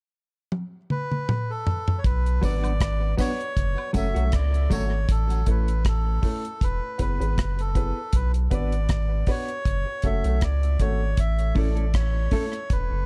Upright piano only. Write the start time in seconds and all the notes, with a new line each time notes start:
2.41 B3 D4 F#4 B4
3.17 B3 D4 F#4 B4
3.94 A3 C#4 F#4 A4
4.15 A3 C#4 F#4 A4
4.70 A3 C#4 F#4 A4
5.46 A3 C#4 E4 A4
6.22 A3 C#4 E4 A4
6.98 B3 E4 G#4 B4
7.19 B3 E4 G#4 B4
7.75 B3 E4 G#4 B4
8.50 B3 D4 F#4 B4
9.27 B3 D4 F#4 B4
10.03 A3 C#4 F#4 A4
10.25 A3 C#4 F#4 A4
10.80 A3 C#4 F#4 A4
11.56 A3 C#4 E4 A4
12.32 A3 C#4 E4 A4